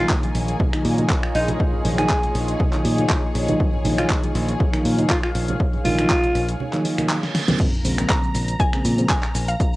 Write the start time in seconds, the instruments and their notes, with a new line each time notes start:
Already playing: ambient pad A#3 D#4 F4 D#5, string section G#4 A#4 C#5 D#5 G#5
0.00 fm electric piano D#3 F3 F#3 A#3 D#4
0.10 kick, clap
0.23 closed hi-hat, high conga
0.35 fingered electric bass A#1, open hi-hat
0.48 closed hi-hat
0.60 kick, high conga
0.73 fm electric piano D#3 F3 F#3 A#3 D#4, finger snap, closed hi-hat
0.85 fingered electric bass A#2, open hi-hat
0.98 fm electric piano D#3 F3 F#3 A#3 D#4, closed hi-hat, high conga
1.10 kick, clap
1.23 finger snap
1.35 fingered electric bass A#1, alto saxophone D#4, open hi-hat
1.48 closed hi-hat, high conga
1.60 kick
1.73 low conga
1.85 fingered electric bass A#1, fm electric piano D#3 F3 F#3 A#3 D#4, open hi-hat, high conga
1.98 fm electric piano D#3 F3 F#3 A#3 D#4, alto saxophone G#4, finger snap, closed hi-hat
2.10 kick, clap
2.23 closed hi-hat, high conga
2.35 fingered electric bass A#1, open hi-hat
2.48 closed hi-hat
2.60 kick, high conga
2.73 fm electric piano D#3 F3 F#3 A#3 D#4, clap, closed hi-hat
2.85 fingered electric bass A#2, fm electric piano D#3 F3 F#3 A#3 D#4, open hi-hat
2.98 fm electric piano D#3 F3 F#3 A#3 D#4, closed hi-hat, high conga
3.10 kick, clap
3.35 fingered electric bass A#1, open hi-hat
3.48 fm electric piano D#3 F3 F#3 A#3 D#4, closed hi-hat, high conga, low conga
3.60 ambient pad F5, kick
3.74 low conga
3.85 fingered electric bass A#1, fm electric piano D#3 F3 F#3 A#3 D#4, open hi-hat, high conga
3.98 fm electric piano D#3 F3 F#3 A#3 D#4, alto saxophone F4, finger snap, closed hi-hat
4.10 kick, clap
4.23 closed hi-hat, high conga
4.35 fingered electric bass A#1, open hi-hat
4.48 closed hi-hat
4.60 kick, high conga
4.73 fm electric piano D#3 F3 F#3 A#3 D#4, finger snap, closed hi-hat
4.85 fingered electric bass A#2, open hi-hat
4.98 fm electric piano D#3 F3 F#3 A#3 D#4, closed hi-hat, high conga
5.10 alto saxophone F4, kick, clap
5.23 alto saxophone F4, finger snap
5.35 fingered electric bass A#1, open hi-hat
5.48 closed hi-hat, high conga
5.60 kick
5.73 closed hi-hat, low conga
5.85 fingered electric bass A#1, fm electric piano D#3 F3 F#3 A#3 D#4, alto saxophone F4, open hi-hat, high conga
5.98 fm electric piano D#3 F3 F#3 A#3 D#4, finger snap, closed hi-hat
6.10 kick, clap
6.23 closed hi-hat, high conga
6.35 fingered electric bass A#1, open hi-hat
6.48 closed hi-hat
6.60 reverse cymbal, high conga
6.73 fm electric piano D#3 F3 F#3 A#3 D#4, clap, closed hi-hat
6.85 fm electric piano D#3 F3 F#3 A#3 D#4, open hi-hat
6.98 fm electric piano D#3 F3 F#3 A#3 D#4, finger snap, closed hi-hat, high conga
7.10 clap
7.23 snare
7.35 snare, open hi-hat
7.48 fm electric piano C#3 F3 G#3 A#3 C4, snare, closed hi-hat, high conga, low conga
7.60 string machine A#5, kick, closed hi-hat, crash, sub drop, shaker
7.74 shaker
7.85 fingered electric bass A#1, fm electric piano C#3 F3 G#3 A#3 C4, open hi-hat, shaker
7.98 fm electric piano C#3 F3 G#3 A#3 C4, finger snap, closed hi-hat, shaker
8.10 synth pluck A#5, kick, clap, closed hi-hat, shaker
8.24 shaker
8.35 fingered electric bass A#1, open hi-hat, shaker
8.48 closed hi-hat, shaker
8.60 synth pluck G#5, kick, closed hi-hat, shaker
8.73 fm electric piano C#3 F3 G#3 A#3 C4, finger snap, shaker
8.85 fingered electric bass A#2, open hi-hat, shaker
8.98 fm electric piano C#3 F3 G#3 A#3 C4, closed hi-hat, shaker
9.10 synth pluck G#5, kick, clap, closed hi-hat, shaker
9.23 finger snap, clap, shaker
9.35 fingered electric bass A#1, open hi-hat, shaker
9.48 synth pluck F5, closed hi-hat, shaker
9.60 kick, closed hi-hat, shaker